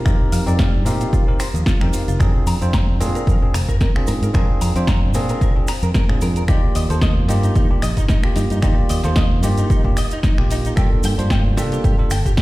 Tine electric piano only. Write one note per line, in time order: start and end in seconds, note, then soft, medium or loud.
0.05 0.43 C4 medium
0.05 0.43 D#4 medium
0.05 0.44 G4 medium
0.05 0.44 A#4 medium
0.46 0.83 C4 medium
0.46 0.83 D#4 medium
0.46 0.83 G4 medium
0.46 0.83 D5 medium
0.85 1.24 C4 medium
0.85 1.24 D#4 medium
0.85 1.24 G4 medium
0.85 1.24 A#4 medium
1.27 1.41 C4 medium
1.27 1.41 D#4 medium
1.27 1.41 G4 medium
1.27 1.41 A#4 medium
1.81 2.17 C4 medium
1.81 2.17 D#4 medium
1.81 2.17 G4 medium
1.81 2.17 A#4 medium
2.20 2.58 C4 medium
2.20 2.58 D4 medium
2.20 2.58 F4 medium
2.20 2.58 G#4 medium
2.61 2.97 C4 medium
2.61 2.98 D4 medium
2.61 2.98 F4 medium
2.61 2.98 C5 medium
3.00 3.38 C4 medium
3.00 3.38 D4 medium
3.00 3.39 F4 medium
3.00 3.39 G#4 loud
3.41 3.55 C4 medium
3.41 3.55 D4 medium
3.41 3.55 F4 medium
3.41 3.55 G#4 medium
3.95 4.31 C4 medium
3.95 4.32 D4 medium
3.95 4.32 F4 medium
3.95 4.32 G#4 medium
4.34 4.72 C4 medium
4.34 4.72 D4 medium
4.34 4.72 F4 medium
4.34 4.72 G#4 medium
4.76 5.12 C4 medium
4.76 5.12 D4 medium
4.76 5.12 F4 medium
4.76 5.12 C5 medium
5.14 5.52 C4 medium
5.14 5.53 D4 medium
5.14 5.53 F4 medium
5.14 5.53 G#4 loud
5.55 5.69 C4 medium
5.55 5.69 D4 medium
5.55 5.69 F4 medium
5.55 5.70 G#4 medium
6.08 6.45 C4 medium
6.08 6.45 D4 medium
6.08 6.45 F4 medium
6.08 6.46 G#4 medium
6.48 6.86 A#3 medium
6.48 6.87 F4 medium
6.48 6.87 G4 loud
6.48 6.86 D5 medium
6.89 7.26 A#3 medium
6.89 7.26 F4 medium
6.89 7.26 C5 medium
7.28 7.66 A#3 medium
7.28 7.67 F4 medium
7.28 7.67 G4 loud
7.70 7.83 A#3 medium
7.70 7.84 D4 medium
7.70 7.84 F4 medium
7.70 7.84 G4 medium
8.23 8.60 A#3 medium
8.23 8.60 F4 medium
8.23 8.60 G4 medium
8.62 9.00 A#3 medium
8.62 9.01 F4 medium
8.62 9.01 G4 medium
8.62 9.00 D5 medium
9.04 9.40 A#3 medium
9.04 9.40 F4 medium
9.04 9.41 C5 medium
9.42 9.81 A#3 medium
9.42 9.81 F4 medium
9.42 9.81 G4 medium
9.84 9.97 A#3 medium
9.84 9.98 D4 medium
9.84 9.98 F4 medium
9.84 9.98 G4 medium
10.37 10.74 A#3 medium
10.37 10.74 F4 medium
10.37 10.74 G4 medium
10.76 11.14 A#3 medium
10.76 11.15 D4 medium
10.76 11.15 F4 medium
10.76 11.15 A4 medium
11.18 11.54 A#3 medium
11.18 11.54 D4 medium
11.18 11.55 F4 medium
11.18 11.55 C5 medium
11.57 11.95 A#3 medium
11.57 11.95 D4 medium
11.57 11.95 F4 medium
11.57 11.96 A4 medium
11.98 12.12 A#3 medium
11.98 12.12 D4 medium
11.98 12.12 F4 medium
11.98 12.12 A4 medium